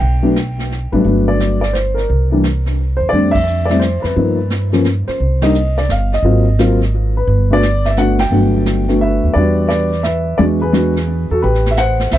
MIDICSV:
0, 0, Header, 1, 5, 480
1, 0, Start_track
1, 0, Key_signature, 1, "major"
1, 0, Tempo, 345622
1, 19, Time_signature, 3, 2, 24, 8
1, 16920, End_track
2, 0, Start_track
2, 0, Title_t, "Grand piano"
2, 0, Program_c, 0, 0
2, 0, Note_on_c, 0, 79, 92
2, 315, Note_on_c, 0, 54, 56
2, 316, Note_on_c, 0, 57, 55
2, 324, Note_on_c, 0, 62, 64
2, 325, Note_on_c, 0, 59, 57
2, 475, Note_off_c, 0, 54, 0
2, 475, Note_off_c, 0, 57, 0
2, 480, Note_off_c, 0, 59, 0
2, 480, Note_off_c, 0, 62, 0
2, 928, Note_off_c, 0, 79, 0
2, 1281, Note_on_c, 0, 71, 66
2, 1287, Note_on_c, 0, 43, 56
2, 1287, Note_on_c, 0, 54, 52
2, 1294, Note_on_c, 0, 59, 55
2, 1296, Note_on_c, 0, 62, 64
2, 1297, Note_on_c, 0, 57, 54
2, 1441, Note_off_c, 0, 43, 0
2, 1441, Note_off_c, 0, 54, 0
2, 1442, Note_off_c, 0, 57, 0
2, 1445, Note_off_c, 0, 59, 0
2, 1446, Note_off_c, 0, 62, 0
2, 1462, Note_on_c, 0, 54, 51
2, 1463, Note_on_c, 0, 57, 49
2, 1470, Note_on_c, 0, 59, 46
2, 1473, Note_on_c, 0, 62, 58
2, 1732, Note_off_c, 0, 71, 0
2, 1777, Note_on_c, 0, 74, 74
2, 2190, Note_off_c, 0, 54, 0
2, 2190, Note_off_c, 0, 57, 0
2, 2194, Note_off_c, 0, 59, 0
2, 2195, Note_off_c, 0, 62, 0
2, 2219, Note_off_c, 0, 74, 0
2, 2240, Note_on_c, 0, 74, 74
2, 2406, Note_on_c, 0, 72, 67
2, 2420, Note_off_c, 0, 74, 0
2, 2701, Note_on_c, 0, 70, 69
2, 2733, Note_off_c, 0, 72, 0
2, 3221, Note_on_c, 0, 58, 48
2, 3224, Note_on_c, 0, 52, 55
2, 3229, Note_on_c, 0, 55, 49
2, 3229, Note_on_c, 0, 62, 59
2, 3369, Note_off_c, 0, 58, 0
2, 3370, Note_off_c, 0, 52, 0
2, 3373, Note_off_c, 0, 55, 0
2, 3373, Note_off_c, 0, 62, 0
2, 4120, Note_on_c, 0, 72, 74
2, 4201, Note_off_c, 0, 70, 0
2, 4291, Note_on_c, 0, 74, 88
2, 4302, Note_off_c, 0, 72, 0
2, 4344, Note_on_c, 0, 55, 47
2, 4345, Note_on_c, 0, 60, 49
2, 4348, Note_on_c, 0, 57, 45
2, 4355, Note_on_c, 0, 62, 60
2, 4602, Note_on_c, 0, 76, 100
2, 4623, Note_off_c, 0, 55, 0
2, 4624, Note_off_c, 0, 60, 0
2, 4625, Note_off_c, 0, 57, 0
2, 4628, Note_off_c, 0, 62, 0
2, 4638, Note_off_c, 0, 74, 0
2, 5073, Note_off_c, 0, 76, 0
2, 5076, Note_on_c, 0, 74, 79
2, 5137, Note_on_c, 0, 55, 55
2, 5143, Note_on_c, 0, 57, 49
2, 5148, Note_on_c, 0, 60, 51
2, 5148, Note_on_c, 0, 64, 63
2, 5270, Note_on_c, 0, 72, 73
2, 5281, Note_off_c, 0, 74, 0
2, 5288, Note_off_c, 0, 55, 0
2, 5291, Note_off_c, 0, 57, 0
2, 5293, Note_off_c, 0, 64, 0
2, 5294, Note_off_c, 0, 60, 0
2, 5586, Note_on_c, 0, 71, 71
2, 5608, Note_off_c, 0, 72, 0
2, 5781, Note_on_c, 0, 53, 50
2, 5792, Note_on_c, 0, 58, 47
2, 5794, Note_on_c, 0, 63, 55
2, 5797, Note_on_c, 0, 59, 44
2, 6062, Note_off_c, 0, 53, 0
2, 6068, Note_off_c, 0, 58, 0
2, 6069, Note_off_c, 0, 63, 0
2, 6070, Note_off_c, 0, 59, 0
2, 6506, Note_off_c, 0, 71, 0
2, 6561, Note_on_c, 0, 58, 53
2, 6568, Note_on_c, 0, 53, 59
2, 6574, Note_on_c, 0, 59, 55
2, 6575, Note_on_c, 0, 61, 65
2, 6721, Note_off_c, 0, 58, 0
2, 6724, Note_off_c, 0, 53, 0
2, 6727, Note_off_c, 0, 59, 0
2, 6728, Note_off_c, 0, 61, 0
2, 7050, Note_on_c, 0, 72, 66
2, 7530, Note_on_c, 0, 55, 58
2, 7537, Note_on_c, 0, 58, 54
2, 7540, Note_on_c, 0, 75, 75
2, 7545, Note_on_c, 0, 62, 55
2, 7548, Note_off_c, 0, 72, 0
2, 7548, Note_on_c, 0, 63, 66
2, 7686, Note_off_c, 0, 55, 0
2, 7690, Note_off_c, 0, 58, 0
2, 7693, Note_off_c, 0, 62, 0
2, 7695, Note_off_c, 0, 63, 0
2, 7985, Note_off_c, 0, 75, 0
2, 8023, Note_on_c, 0, 74, 69
2, 8195, Note_off_c, 0, 74, 0
2, 8213, Note_on_c, 0, 77, 72
2, 8519, Note_off_c, 0, 77, 0
2, 8527, Note_on_c, 0, 75, 76
2, 8670, Note_on_c, 0, 54, 53
2, 8671, Note_on_c, 0, 58, 51
2, 8673, Note_on_c, 0, 60, 49
2, 8677, Note_on_c, 0, 65, 57
2, 8948, Note_off_c, 0, 54, 0
2, 8949, Note_off_c, 0, 58, 0
2, 8949, Note_off_c, 0, 60, 0
2, 8951, Note_off_c, 0, 65, 0
2, 9149, Note_on_c, 0, 58, 59
2, 9151, Note_on_c, 0, 54, 61
2, 9154, Note_on_c, 0, 60, 56
2, 9157, Note_on_c, 0, 65, 66
2, 9427, Note_off_c, 0, 58, 0
2, 9429, Note_off_c, 0, 54, 0
2, 9430, Note_off_c, 0, 60, 0
2, 9432, Note_off_c, 0, 65, 0
2, 9958, Note_on_c, 0, 71, 73
2, 9996, Note_off_c, 0, 75, 0
2, 10424, Note_on_c, 0, 57, 56
2, 10424, Note_on_c, 0, 62, 54
2, 10430, Note_on_c, 0, 59, 54
2, 10434, Note_on_c, 0, 66, 63
2, 10442, Note_off_c, 0, 71, 0
2, 10458, Note_on_c, 0, 74, 98
2, 10573, Note_off_c, 0, 57, 0
2, 10573, Note_off_c, 0, 62, 0
2, 10576, Note_off_c, 0, 59, 0
2, 10579, Note_off_c, 0, 66, 0
2, 10910, Note_on_c, 0, 76, 78
2, 10932, Note_off_c, 0, 74, 0
2, 11062, Note_off_c, 0, 76, 0
2, 11069, Note_on_c, 0, 59, 45
2, 11074, Note_on_c, 0, 57, 52
2, 11081, Note_on_c, 0, 66, 54
2, 11082, Note_on_c, 0, 62, 45
2, 11084, Note_on_c, 0, 78, 86
2, 11347, Note_off_c, 0, 59, 0
2, 11350, Note_off_c, 0, 57, 0
2, 11354, Note_off_c, 0, 62, 0
2, 11354, Note_off_c, 0, 66, 0
2, 11383, Note_on_c, 0, 79, 87
2, 11395, Note_off_c, 0, 78, 0
2, 11548, Note_on_c, 0, 57, 48
2, 11549, Note_on_c, 0, 59, 46
2, 11555, Note_on_c, 0, 54, 56
2, 11555, Note_on_c, 0, 62, 48
2, 12275, Note_off_c, 0, 57, 0
2, 12276, Note_off_c, 0, 59, 0
2, 12279, Note_off_c, 0, 54, 0
2, 12279, Note_off_c, 0, 62, 0
2, 12341, Note_on_c, 0, 57, 51
2, 12345, Note_on_c, 0, 62, 46
2, 12348, Note_on_c, 0, 59, 49
2, 12349, Note_on_c, 0, 66, 53
2, 12454, Note_off_c, 0, 79, 0
2, 12515, Note_on_c, 0, 76, 76
2, 12545, Note_on_c, 0, 71, 57
2, 12954, Note_off_c, 0, 57, 0
2, 12956, Note_off_c, 0, 62, 0
2, 12957, Note_off_c, 0, 59, 0
2, 12957, Note_off_c, 0, 76, 0
2, 12958, Note_off_c, 0, 66, 0
2, 12959, Note_off_c, 0, 71, 0
2, 12965, Note_on_c, 0, 74, 86
2, 12979, Note_on_c, 0, 71, 66
2, 12995, Note_on_c, 0, 55, 49
2, 13001, Note_on_c, 0, 59, 45
2, 13001, Note_on_c, 0, 62, 44
2, 13003, Note_on_c, 0, 66, 54
2, 13428, Note_off_c, 0, 71, 0
2, 13431, Note_off_c, 0, 74, 0
2, 13452, Note_on_c, 0, 74, 82
2, 13472, Note_on_c, 0, 71, 62
2, 13718, Note_off_c, 0, 55, 0
2, 13721, Note_off_c, 0, 59, 0
2, 13721, Note_off_c, 0, 62, 0
2, 13722, Note_off_c, 0, 66, 0
2, 13904, Note_off_c, 0, 74, 0
2, 13914, Note_off_c, 0, 71, 0
2, 13932, Note_on_c, 0, 76, 78
2, 13954, Note_on_c, 0, 71, 59
2, 14395, Note_off_c, 0, 71, 0
2, 14412, Note_on_c, 0, 74, 86
2, 14422, Note_on_c, 0, 71, 62
2, 14429, Note_on_c, 0, 56, 60
2, 14432, Note_off_c, 0, 76, 0
2, 14438, Note_on_c, 0, 59, 53
2, 14441, Note_on_c, 0, 66, 63
2, 14442, Note_on_c, 0, 62, 53
2, 14483, Note_off_c, 0, 74, 0
2, 14492, Note_off_c, 0, 71, 0
2, 14705, Note_off_c, 0, 56, 0
2, 14710, Note_off_c, 0, 59, 0
2, 14711, Note_off_c, 0, 66, 0
2, 14712, Note_off_c, 0, 62, 0
2, 14743, Note_on_c, 0, 71, 85
2, 14752, Note_on_c, 0, 68, 65
2, 14902, Note_on_c, 0, 56, 58
2, 14903, Note_on_c, 0, 59, 52
2, 14903, Note_on_c, 0, 62, 51
2, 14908, Note_on_c, 0, 66, 66
2, 15181, Note_off_c, 0, 56, 0
2, 15182, Note_off_c, 0, 59, 0
2, 15182, Note_off_c, 0, 62, 0
2, 15184, Note_off_c, 0, 66, 0
2, 15641, Note_off_c, 0, 71, 0
2, 15646, Note_off_c, 0, 68, 0
2, 15712, Note_on_c, 0, 69, 78
2, 15728, Note_on_c, 0, 66, 59
2, 15860, Note_off_c, 0, 69, 0
2, 15863, Note_on_c, 0, 71, 86
2, 15868, Note_off_c, 0, 66, 0
2, 15877, Note_on_c, 0, 67, 66
2, 16243, Note_off_c, 0, 71, 0
2, 16251, Note_off_c, 0, 67, 0
2, 16261, Note_on_c, 0, 76, 74
2, 16335, Note_off_c, 0, 76, 0
2, 16359, Note_on_c, 0, 78, 92
2, 16384, Note_on_c, 0, 72, 70
2, 16795, Note_off_c, 0, 78, 0
2, 16809, Note_off_c, 0, 72, 0
2, 16848, Note_on_c, 0, 76, 87
2, 16873, Note_on_c, 0, 72, 69
2, 16920, Note_off_c, 0, 72, 0
2, 16920, Note_off_c, 0, 76, 0
2, 16920, End_track
3, 0, Start_track
3, 0, Title_t, "Upright bass"
3, 0, Program_c, 1, 32
3, 16, Note_on_c, 1, 35, 74
3, 1233, Note_off_c, 1, 35, 0
3, 1284, Note_on_c, 1, 33, 56
3, 1445, Note_off_c, 1, 33, 0
3, 1452, Note_on_c, 1, 31, 72
3, 2841, Note_off_c, 1, 31, 0
3, 2911, Note_on_c, 1, 36, 73
3, 4122, Note_off_c, 1, 36, 0
3, 4169, Note_on_c, 1, 40, 59
3, 4328, Note_off_c, 1, 40, 0
3, 4343, Note_on_c, 1, 41, 76
3, 5559, Note_off_c, 1, 41, 0
3, 5610, Note_on_c, 1, 41, 60
3, 5770, Note_off_c, 1, 41, 0
3, 5782, Note_on_c, 1, 43, 74
3, 6999, Note_off_c, 1, 43, 0
3, 7222, Note_on_c, 1, 36, 67
3, 8129, Note_off_c, 1, 36, 0
3, 8178, Note_on_c, 1, 31, 69
3, 8629, Note_off_c, 1, 31, 0
3, 8646, Note_on_c, 1, 32, 77
3, 10042, Note_off_c, 1, 32, 0
3, 10103, Note_on_c, 1, 31, 80
3, 11489, Note_off_c, 1, 31, 0
3, 11537, Note_on_c, 1, 31, 73
3, 12756, Note_off_c, 1, 31, 0
3, 12830, Note_on_c, 1, 39, 53
3, 12982, Note_off_c, 1, 39, 0
3, 12991, Note_on_c, 1, 40, 73
3, 14371, Note_off_c, 1, 40, 0
3, 14431, Note_on_c, 1, 40, 76
3, 15640, Note_off_c, 1, 40, 0
3, 15704, Note_on_c, 1, 40, 58
3, 15856, Note_off_c, 1, 40, 0
3, 15885, Note_on_c, 1, 33, 83
3, 16775, Note_off_c, 1, 33, 0
3, 16837, Note_on_c, 1, 36, 71
3, 16920, Note_off_c, 1, 36, 0
3, 16920, End_track
4, 0, Start_track
4, 0, Title_t, "Muted upright bass strokes"
4, 7060, Note_on_c, 9, 29, 32
4, 7199, Note_off_c, 9, 29, 0
4, 16920, End_track
5, 0, Start_track
5, 0, Title_t, "Drums"
5, 22, Note_on_c, 9, 25, 36
5, 498, Note_on_c, 9, 44, 50
5, 500, Note_on_c, 9, 38, 54
5, 637, Note_off_c, 9, 44, 0
5, 639, Note_off_c, 9, 38, 0
5, 818, Note_on_c, 9, 38, 31
5, 957, Note_off_c, 9, 38, 0
5, 986, Note_on_c, 9, 38, 33
5, 1125, Note_off_c, 9, 38, 0
5, 1289, Note_on_c, 9, 36, 45
5, 1428, Note_off_c, 9, 36, 0
5, 1461, Note_off_c, 9, 25, 0
5, 1461, Note_on_c, 9, 25, 40
5, 1944, Note_on_c, 9, 44, 45
5, 1946, Note_on_c, 9, 38, 50
5, 2083, Note_off_c, 9, 44, 0
5, 2085, Note_off_c, 9, 38, 0
5, 2257, Note_on_c, 9, 38, 30
5, 2396, Note_off_c, 9, 38, 0
5, 2425, Note_on_c, 9, 44, 46
5, 2426, Note_on_c, 9, 38, 49
5, 2563, Note_off_c, 9, 44, 0
5, 2565, Note_off_c, 9, 38, 0
5, 2741, Note_on_c, 9, 38, 33
5, 2880, Note_off_c, 9, 38, 0
5, 2904, Note_off_c, 9, 25, 0
5, 2904, Note_on_c, 9, 25, 43
5, 3380, Note_on_c, 9, 44, 46
5, 3382, Note_on_c, 9, 38, 51
5, 3519, Note_off_c, 9, 44, 0
5, 3521, Note_off_c, 9, 38, 0
5, 3692, Note_on_c, 9, 38, 30
5, 3831, Note_off_c, 9, 38, 0
5, 4345, Note_off_c, 9, 25, 0
5, 4345, Note_on_c, 9, 25, 42
5, 4651, Note_on_c, 9, 51, 64
5, 4653, Note_on_c, 9, 36, 72
5, 4789, Note_off_c, 9, 51, 0
5, 4792, Note_off_c, 9, 36, 0
5, 4817, Note_on_c, 9, 44, 43
5, 4956, Note_off_c, 9, 44, 0
5, 5127, Note_on_c, 9, 38, 31
5, 5265, Note_off_c, 9, 38, 0
5, 5293, Note_on_c, 9, 44, 52
5, 5295, Note_on_c, 9, 38, 52
5, 5432, Note_off_c, 9, 44, 0
5, 5434, Note_off_c, 9, 38, 0
5, 5606, Note_on_c, 9, 38, 33
5, 5744, Note_off_c, 9, 38, 0
5, 5776, Note_off_c, 9, 25, 0
5, 5776, Note_on_c, 9, 25, 37
5, 6252, Note_on_c, 9, 44, 48
5, 6253, Note_on_c, 9, 38, 50
5, 6390, Note_off_c, 9, 44, 0
5, 6392, Note_off_c, 9, 38, 0
5, 6560, Note_on_c, 9, 38, 31
5, 6699, Note_off_c, 9, 38, 0
5, 6728, Note_on_c, 9, 44, 50
5, 6729, Note_on_c, 9, 38, 50
5, 6867, Note_off_c, 9, 44, 0
5, 6868, Note_off_c, 9, 38, 0
5, 7049, Note_on_c, 9, 38, 32
5, 7188, Note_off_c, 9, 38, 0
5, 7214, Note_off_c, 9, 25, 0
5, 7214, Note_on_c, 9, 25, 42
5, 7522, Note_on_c, 9, 51, 58
5, 7524, Note_on_c, 9, 38, 70
5, 7661, Note_off_c, 9, 51, 0
5, 7663, Note_off_c, 9, 38, 0
5, 7698, Note_on_c, 9, 44, 57
5, 7837, Note_off_c, 9, 44, 0
5, 8015, Note_on_c, 9, 38, 36
5, 8154, Note_off_c, 9, 38, 0
5, 8185, Note_on_c, 9, 44, 52
5, 8187, Note_on_c, 9, 38, 52
5, 8324, Note_off_c, 9, 44, 0
5, 8325, Note_off_c, 9, 38, 0
5, 8505, Note_on_c, 9, 38, 33
5, 8644, Note_off_c, 9, 38, 0
5, 8669, Note_off_c, 9, 25, 0
5, 8669, Note_on_c, 9, 25, 37
5, 9148, Note_on_c, 9, 44, 54
5, 9150, Note_on_c, 9, 38, 54
5, 9287, Note_off_c, 9, 44, 0
5, 9288, Note_off_c, 9, 38, 0
5, 9466, Note_on_c, 9, 38, 32
5, 9605, Note_off_c, 9, 38, 0
5, 10103, Note_off_c, 9, 25, 0
5, 10103, Note_on_c, 9, 25, 37
5, 10589, Note_on_c, 9, 44, 48
5, 10590, Note_on_c, 9, 38, 53
5, 10728, Note_off_c, 9, 44, 0
5, 10729, Note_off_c, 9, 38, 0
5, 10896, Note_on_c, 9, 38, 33
5, 11035, Note_off_c, 9, 38, 0
5, 11062, Note_on_c, 9, 44, 47
5, 11063, Note_on_c, 9, 38, 48
5, 11201, Note_off_c, 9, 44, 0
5, 11202, Note_off_c, 9, 38, 0
5, 11372, Note_on_c, 9, 51, 57
5, 11373, Note_on_c, 9, 38, 72
5, 11511, Note_off_c, 9, 51, 0
5, 11512, Note_off_c, 9, 38, 0
5, 11542, Note_off_c, 9, 25, 0
5, 11542, Note_on_c, 9, 25, 40
5, 12024, Note_on_c, 9, 44, 55
5, 12025, Note_on_c, 9, 38, 52
5, 12163, Note_off_c, 9, 44, 0
5, 12164, Note_off_c, 9, 38, 0
5, 12334, Note_on_c, 9, 38, 30
5, 12473, Note_off_c, 9, 38, 0
5, 12989, Note_off_c, 9, 25, 0
5, 12989, Note_on_c, 9, 25, 47
5, 13471, Note_on_c, 9, 44, 58
5, 13472, Note_on_c, 9, 38, 55
5, 13609, Note_off_c, 9, 44, 0
5, 13611, Note_off_c, 9, 38, 0
5, 13781, Note_on_c, 9, 38, 32
5, 13920, Note_off_c, 9, 38, 0
5, 13940, Note_on_c, 9, 44, 47
5, 13941, Note_on_c, 9, 38, 55
5, 14078, Note_off_c, 9, 44, 0
5, 14080, Note_off_c, 9, 38, 0
5, 14422, Note_off_c, 9, 25, 0
5, 14422, Note_on_c, 9, 25, 45
5, 14908, Note_on_c, 9, 44, 48
5, 14910, Note_on_c, 9, 38, 52
5, 15047, Note_off_c, 9, 44, 0
5, 15049, Note_off_c, 9, 38, 0
5, 15221, Note_on_c, 9, 38, 34
5, 15359, Note_off_c, 9, 38, 0
5, 15868, Note_off_c, 9, 25, 0
5, 15868, Note_on_c, 9, 25, 48
5, 16030, Note_on_c, 9, 38, 24
5, 16169, Note_off_c, 9, 38, 0
5, 16191, Note_on_c, 9, 38, 41
5, 16330, Note_off_c, 9, 38, 0
5, 16342, Note_on_c, 9, 44, 60
5, 16343, Note_on_c, 9, 38, 55
5, 16481, Note_off_c, 9, 44, 0
5, 16482, Note_off_c, 9, 38, 0
5, 16657, Note_on_c, 9, 38, 36
5, 16796, Note_off_c, 9, 38, 0
5, 16818, Note_on_c, 9, 44, 50
5, 16820, Note_on_c, 9, 38, 51
5, 16920, Note_off_c, 9, 25, 0
5, 16920, Note_off_c, 9, 38, 0
5, 16920, Note_off_c, 9, 44, 0
5, 16920, End_track
0, 0, End_of_file